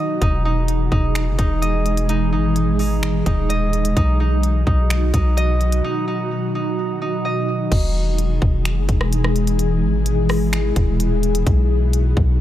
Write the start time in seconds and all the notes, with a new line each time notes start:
Already playing: B2 D#3 F#3 D#4 F#4 D#5
0.22 E1 E3 G#3 D#4 G#4, kick, closed hi-hat
0.45 D#4
0.68 closed hi-hat
0.92 E1 D#4, kick
1.15 finger snap, closed hi-hat
1.27 F#1
1.38 E1 D#4, kick, closed hi-hat
1.62 D#5, closed hi-hat
1.86 closed hi-hat
1.97 closed hi-hat
2.09 D#4, closed hi-hat
2.32 G#1 D#4
2.56 closed hi-hat
2.79 D#4, open hi-hat
3.03 finger snap, closed hi-hat
3.26 D#1 D#4, kick, closed hi-hat
3.49 D#5, closed hi-hat
3.73 closed hi-hat
3.85 closed hi-hat
3.97 B1 B2 D#3 F#3 D#4 F#4, kick, closed hi-hat
4.20 D#4
4.43 closed hi-hat
4.67 B1 D#4, kick
4.90 finger snap, closed hi-hat
5.14 B1 D#4, kick, closed hi-hat
5.37 D#5, closed hi-hat
5.61 closed hi-hat
5.72 closed hi-hat
5.84 D#4
6.08 D#4
6.55 D#4
7.02 D#4
7.25 D#5
7.72 E1 B2 E3 G#3 D#4 G#4, kick, closed hi-hat, crash
8.18 closed hi-hat
8.42 E1, kick
8.65 finger snap, closed hi-hat
8.77 F#1
8.89 E1, kick, closed hi-hat
9.01 cross-stick
9.13 closed hi-hat
9.24 cross-stick
9.36 closed hi-hat
9.47 closed hi-hat
9.59 E4, closed hi-hat
9.82 G#1
10.06 closed hi-hat
10.29 cross-stick, open hi-hat
10.53 finger snap, closed hi-hat
10.76 D#1, kick, closed hi-hat
11.00 closed hi-hat
11.23 closed hi-hat
11.35 closed hi-hat
11.47 B1 D#3 F#3 D#4 F#4, kick, closed hi-hat
11.93 closed hi-hat
12.17 B1, kick